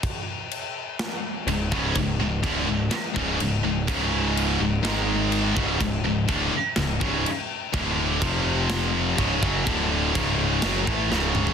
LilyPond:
<<
  \new Staff \with { instrumentName = "Distorted electric guitar" } { \clef bass \time 4/4 \tempo 4 = 125 r2. <cis, gis,>8 <cis, gis, cis>8 | <cis, gis,>8 <cis, gis,>8 <d, a, d>8 <cis, gis,>8 r8 <cis, gis, cis>8 <cis, gis,>8 <cis, gis,>8 | <cis, gis, cis>4. <cis, gis,>8 <gis, dis gis>4. <cis, gis, cis>8 | <cis, gis,>8 <cis, gis,>8 <d, a, d>8 r8 <cis, gis,>8 <cis, gis, cis>8 r4 |
<d, a, d>4 <f, c f>2 <cis, gis, cis>8 <fis, cis fis>8 | <d, a, d>4 <cis, gis, cis>4 <fis, cis fis>8 <a, e a>8 <cis, gis, cis>4 | }
  \new Staff \with { instrumentName = "Distorted electric guitar" } { \clef bass \time 4/4 r2. <cis, gis,>8 <cis, gis, cis>8 | <cis, gis,>8 <cis, gis,>8 <d, a, d>8 <cis, gis,>8 r8 <cis, gis, cis>8 <cis, gis,>8 <cis, gis,>8 | <cis, gis, cis>4. <cis, gis,>8 <gis, dis gis>4. <cis, gis, cis>8 | <cis, gis,>8 <cis, gis,>8 <d, a, d>8 r8 <cis, gis,>8 <cis, gis, cis>8 r4 |
<d, a, d>4 <f, c f>2 <cis, gis, cis>8 <fis, cis fis>8 | <d, a, d>4 <cis, gis, cis>4 <fis, cis fis>8 <a, e a>8 <cis, gis, cis>4 | }
  \new Staff \with { instrumentName = "Distorted electric guitar" } { \clef bass \time 4/4 r2. <cis, gis,>8 <cis, gis, cis>8 | <cis, gis,>8 <cis, gis,>8 <d, a, d>8 <cis, gis,>8 r8 <cis, gis, cis>8 <cis, gis,>8 <cis, gis,>8 | <cis, gis, cis>4. <cis, gis,>8 <gis, dis gis>4. <cis, gis, cis>8 | <cis, gis,>8 <cis, gis,>8 <d, a, d>8 r8 <cis, gis,>8 <cis, gis, cis>8 r4 |
<d, a, d>4 <f, c f>2 <cis, gis, cis>8 <fis, cis fis>8 | <d, a, d>4 <cis, gis, cis>4 <fis, cis fis>8 <a, e a>8 <cis, gis, cis>4 | }
  \new Staff \with { instrumentName = "Picked electric bass" } { \clef bass \time 4/4 r2. cis,,8 cis,,8 | cis,,8 cis,,8 d,,8 cis,,8 r8 cis,,8 cis,,8 cis,,8 | cis,,4. cis,,8 gis,,4. cis,,8 | cis,,8 cis,,8 d,,8 r8 cis,,8 cis,,8 r4 |
d,,4 f,,2 cis,,8 fis,,8 | d,,4 cis,,4 fis,,8 a,,8 cis,,4 | }
  \new DrumStaff \with { instrumentName = "Drums" } \drummode { \time 4/4 <cymc bd>4 cymc4 <cymc sn>4 cymc8 bd8 | <cymc bd>4 <cymc bd>4 <cymc sn>8 bd8 cymc4 | <cymc bd>4 cymc4 <cymc sn>4 cymc8 bd8 | <cymc bd>4 <cymc bd>4 <cymc sn>8 bd8 cymc4 |
<cymc bd>4 <cymc bd>4 <cymc sn>4 <cymc bd>8 bd8 | <cymc bd>4 <cymc bd>4 <cymc sn>8 bd8 sn8 toml16 tomfh16 | }
>>